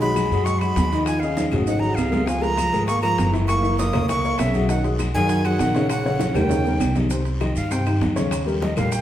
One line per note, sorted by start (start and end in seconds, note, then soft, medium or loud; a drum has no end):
0.00 0.26 B1 medium
0.00 0.26 F#3 medium
0.00 0.44 G#3 medium
0.00 0.27 F#4 medium
0.00 0.27 G#4 medium
0.00 0.46 B5 loud
0.00 high timbale medium
0.00 maracas soft
0.16 high bongo medium
0.16 high conga medium
0.16 high timbale medium
0.16 low timbale medium
0.16 short guiro medium
0.16 claves medium
0.16 maracas medium
0.31 0.74 F#2 loud
0.31 0.57 F#3 medium
0.31 0.58 F#4 medium
0.31 0.57 G#4 medium
0.31 high bongo soft
0.31 high conga soft
0.31 short guiro medium
0.31 maracas soft
0.44 0.58 G#3 medium
0.44 0.60 C#6 medium
0.44 high bongo medium
0.44 high conga soft
0.44 high timbale medium
0.44 long guiro medium
0.44 maracas medium
0.58 0.86 F#3 medium
0.58 1.04 G#3 medium
0.58 0.87 F#4 medium
0.58 0.87 G#4 medium
0.58 1.06 B5 loud
0.58 high bongo soft
0.58 high conga soft
0.58 high timbale medium
0.58 claves medium
0.58 maracas soft
0.76 1.47 D#2 loud
0.76 high bongo medium
0.76 low bongo medium
0.76 high conga medium
0.76 low timbale medium
0.76 short guiro medium
0.76 maracas medium
0.92 1.17 D#3 medium
0.92 1.17 D#4 medium
0.92 1.17 D#5 medium
0.92 high timbale medium
0.92 short guiro medium
0.92 maracas soft
1.05 1.21 F3 medium
1.05 1.21 G#5 medium
1.05 high bongo medium
1.05 high conga soft
1.05 high timbale medium
1.05 long guiro medium
1.05 claves medium
1.05 maracas medium
1.20 1.64 C#3 medium
1.20 1.47 D#3 medium
1.20 1.48 D#4 medium
1.20 1.48 D#5 medium
1.20 1.46 F5 loud
1.20 high bongo soft
1.20 high conga soft
1.20 maracas soft
1.36 high bongo medium
1.36 high conga loud
1.36 high timbale medium
1.36 short guiro medium
1.36 maracas medium
1.51 1.94 G#1 medium
1.51 1.65 F#3 medium
1.51 1.65 F#4 medium
1.51 1.66 G#4 medium
1.51 low bongo medium
1.51 high conga soft
1.51 low conga medium
1.51 high timbale medium
1.51 short guiro medium
1.51 claves medium
1.51 maracas soft
1.65 1.81 D#3 medium
1.65 1.80 D#3 medium
1.65 1.80 D#4 medium
1.65 1.80 D#5 medium
1.65 1.81 F#5 medium
1.65 high conga soft
1.65 high timbale medium
1.65 long guiro medium
1.65 maracas medium
1.79 1.98 F#3 medium
1.79 2.07 F#3 medium
1.79 2.07 F#4 medium
1.79 2.07 G#4 medium
1.79 1.96 A#5 medium
1.79 high conga soft
1.79 maracas soft
1.95 2.67 C#2 medium
1.95 2.28 C3 medium
1.95 2.28 F5 medium
1.95 high conga soft
1.95 low timbale loud
1.95 short guiro medium
1.95 claves medium
1.95 maracas medium
2.11 2.24 G#3 medium
2.11 2.24 G#4 medium
2.11 2.25 A#4 medium
2.11 low bongo medium
2.11 high conga medium
2.11 low timbale medium
2.11 short guiro medium
2.11 maracas soft
2.27 2.42 F3 medium
2.27 2.40 F3 medium
2.27 2.40 F4 medium
2.27 2.40 F5 medium
2.27 2.44 G#5 medium
2.27 high bongo medium
2.27 long guiro medium
2.27 maracas medium
2.41 2.88 F3 medium
2.41 2.67 G#3 medium
2.41 2.67 G#4 medium
2.41 2.67 A#4 medium
2.41 2.86 A#5 loud
2.41 high bongo soft
2.41 high conga soft
2.41 high timbale medium
2.41 maracas soft
2.57 high bongo medium
2.57 high conga medium
2.57 high timbale medium
2.57 low timbale medium
2.57 short guiro medium
2.57 claves medium
2.57 maracas medium
2.73 3.15 G#1 medium
2.73 2.98 G#3 medium
2.73 2.98 G#4 medium
2.73 2.98 A#4 medium
2.73 high bongo soft
2.73 short guiro medium
2.73 maracas soft
2.87 3.02 A#3 medium
2.87 3.01 C#6 loud
2.87 high bongo medium
2.87 high conga soft
2.87 high timbale medium
2.87 long guiro medium
2.87 maracas medium
3.02 3.31 F3 medium
3.02 3.28 G#3 medium
3.02 3.28 G#4 medium
3.02 3.28 A#4 medium
3.02 3.31 A#5 loud
3.02 high bongo soft
3.02 high conga soft
3.02 high timbale medium
3.02 claves medium
3.02 maracas soft
3.18 3.88 F#1 loud
3.18 high bongo medium
3.18 low bongo medium
3.18 high conga medium
3.18 low timbale medium
3.18 short guiro medium
3.18 maracas medium
3.32 3.58 E3 medium
3.32 3.58 E4 medium
3.32 3.58 E5 medium
3.32 high timbale medium
3.32 short guiro medium
3.32 maracas soft
3.48 3.77 A#3 medium
3.48 3.76 C#6 loud
3.48 high bongo medium
3.48 high conga soft
3.48 high timbale medium
3.48 long guiro medium
3.48 claves medium
3.48 maracas medium
3.62 3.88 E3 medium
3.62 3.88 E4 medium
3.62 3.88 E5 medium
3.62 high bongo soft
3.62 high conga soft
3.62 maracas soft
3.78 4.07 A#3 medium
3.78 4.07 D#6 loud
3.78 high bongo medium
3.78 high conga loud
3.78 high timbale medium
3.78 low timbale medium
3.78 short guiro medium
3.78 maracas medium
3.93 4.36 C#2 medium
3.93 4.06 A#3 medium
3.93 4.06 A#4 medium
3.93 4.06 C#5 medium
3.93 high bongo soft
3.93 high conga soft
3.93 low conga medium
3.93 high timbale loud
3.93 short guiro medium
3.93 claves medium
3.93 maracas soft
4.08 4.21 E3 medium
4.08 4.41 A#3 medium
4.08 4.21 E4 medium
4.08 4.21 E5 medium
4.08 4.40 C#6 loud
4.08 high bongo medium
4.08 high conga soft
4.08 long guiro medium
4.08 maracas medium
4.24 4.49 A#3 medium
4.24 4.49 A#4 medium
4.24 4.50 C#5 medium
4.24 high bongo soft
4.24 high conga soft
4.24 maracas soft
4.39 5.09 B1 loud
4.39 4.69 C#3 medium
4.39 4.69 E5 medium
4.39 high bongo medium
4.39 low bongo medium
4.39 high conga soft
4.39 high timbale loud
4.39 low timbale medium
4.39 short guiro medium
4.39 claves medium
4.39 maracas medium
4.54 4.67 F#3 medium
4.54 4.67 F#4 medium
4.54 4.67 G#4 medium
4.54 high conga medium
4.54 short guiro medium
4.54 maracas soft
4.69 4.81 D#3 medium
4.69 4.83 D#3 medium
4.69 4.81 D#4 medium
4.69 4.81 D#5 medium
4.69 4.83 F#5 medium
4.69 high bongo medium
4.69 long guiro medium
4.69 maracas medium
4.84 5.09 F#3 medium
4.84 5.09 F#4 medium
4.84 5.09 G#4 medium
4.84 high bongo soft
4.84 high timbale medium
4.84 maracas soft
4.99 high bongo medium
4.99 high conga medium
4.99 high timbale medium
4.99 low timbale soft
4.99 short guiro medium
4.99 claves medium
4.99 maracas medium
5.14 5.57 F#2 loud
5.14 5.45 D#3 loud
5.14 5.40 F#3 medium
5.14 5.40 F#4 medium
5.14 5.40 G#4 medium
5.14 5.47 G#5 loud
5.14 high bongo soft
5.14 high conga soft
5.14 short guiro medium
5.14 maracas soft
5.29 high bongo medium
5.29 high conga soft
5.29 high timbale medium
5.29 long guiro medium
5.29 maracas medium
5.44 5.90 D#3 medium
5.44 5.70 F#3 medium
5.44 5.70 F#4 medium
5.44 5.70 G#4 medium
5.44 5.90 F#5 loud
5.44 high bongo soft
5.44 high conga soft
5.44 high timbale medium
5.44 claves medium
5.44 maracas soft
5.59 6.30 A#1 medium
5.59 high bongo medium
5.59 low bongo medium
5.59 high conga medium
5.59 low timbale medium
5.59 short guiro medium
5.59 maracas medium
5.75 6.00 C#3 medium
5.75 6.00 C#4 medium
5.75 6.00 C#5 medium
5.75 high timbale medium
5.75 short guiro medium
5.75 maracas soft
5.89 6.38 C#3 medium
5.89 6.37 F#5 medium
5.89 high bongo medium
5.89 high conga soft
5.89 high timbale loud
5.89 long guiro medium
5.89 claves medium
5.89 maracas medium
6.05 6.30 C#3 medium
6.05 6.30 C#4 medium
6.05 6.30 C#5 medium
6.05 high bongo soft
6.05 high conga soft
6.05 maracas soft
6.19 high bongo medium
6.19 high conga loud
6.19 high timbale medium
6.19 short guiro medium
6.19 maracas medium
6.34 6.77 D#2 medium
6.34 6.96 D#3 medium
6.34 6.48 G3 medium
6.34 6.48 G4 medium
6.34 6.48 A#4 medium
6.34 6.96 G5 medium
6.34 high bongo loud
6.34 high conga soft
6.34 low conga medium
6.34 high timbale loud
6.34 short guiro medium
6.34 claves medium
6.34 maracas soft
6.49 6.62 C#3 medium
6.49 6.63 C#4 medium
6.49 6.63 C#5 medium
6.49 high conga soft
6.49 low conga medium
6.49 high timbale loud
6.49 long guiro medium
6.49 maracas medium
6.65 6.91 G3 medium
6.65 6.91 G4 medium
6.65 6.91 A#4 medium
6.65 low bongo medium
6.65 high conga soft
6.65 low timbale medium
6.65 maracas soft
6.80 7.50 C2 medium
6.80 low bongo medium
6.80 high conga soft
6.80 low timbale medium
6.80 short guiro medium
6.80 claves medium
6.80 maracas medium
6.95 7.08 D#3 medium
6.95 7.08 D#4 medium
6.95 7.08 G4 medium
6.95 low bongo medium
6.95 high conga medium
6.95 low timbale medium
6.95 short guiro medium
6.95 maracas soft
7.10 7.35 C3 medium
7.10 7.36 C4 medium
7.10 7.36 C5 medium
7.10 high bongo medium
7.10 long guiro medium
7.10 maracas medium
7.25 high bongo soft
7.25 high conga soft
7.25 high timbale medium
7.25 maracas soft
7.40 7.65 D#3 medium
7.40 7.66 D#4 medium
7.40 7.66 G4 medium
7.40 7.55 D#5 medium
7.40 high bongo medium
7.40 high conga medium
7.40 high timbale medium
7.40 low timbale medium
7.40 short guiro medium
7.40 claves medium
7.40 maracas soft
7.55 7.98 G2 medium
7.55 7.73 F5 medium
7.55 high bongo soft
7.55 short guiro medium
7.55 maracas medium
7.71 7.84 C3 medium
7.71 7.84 C4 medium
7.71 7.84 C5 medium
7.71 8.02 G5 medium
7.71 high bongo medium
7.71 high conga soft
7.71 high timbale medium
7.71 long guiro medium
7.71 maracas medium
7.85 8.11 D#3 medium
7.85 8.11 D#4 medium
7.85 8.11 G4 medium
7.85 high bongo soft
7.85 high conga soft
7.85 high timbale medium
7.85 claves medium
7.85 maracas soft
8.01 8.71 D#2 medium
8.01 high bongo medium
8.01 low bongo medium
8.01 high conga medium
8.01 low timbale medium
8.01 short guiro medium
8.01 maracas soft
8.16 8.41 C#3 medium
8.16 8.41 C#4 medium
8.16 8.41 C#5 medium
8.16 high conga medium
8.16 high timbale medium
8.16 short guiro medium
8.16 maracas medium
8.31 high bongo medium
8.31 high conga soft
8.31 high timbale medium
8.31 long guiro medium
8.31 claves medium
8.31 maracas medium
8.46 8.71 G3 medium
8.46 8.71 G4 medium
8.46 8.72 A#4 medium
8.46 high bongo soft
8.46 high conga soft
8.46 maracas soft
8.61 8.76 D#5 medium
8.61 high bongo medium
8.61 high conga loud
8.61 high timbale medium
8.61 low timbale medium
8.61 short guiro medium
8.61 maracas soft
8.76 9.01 A#1 medium
8.76 9.01 G3 medium
8.76 9.01 G4 medium
8.76 9.01 A#4 medium
8.76 8.93 F5 medium
8.76 high bongo soft
8.76 high conga soft
8.76 low conga medium
8.76 high timbale medium
8.76 short guiro medium
8.76 claves medium
8.76 maracas medium
8.91 9.01 G5 medium
8.91 high bongo medium
8.91 high conga soft
8.91 long guiro medium
8.91 maracas medium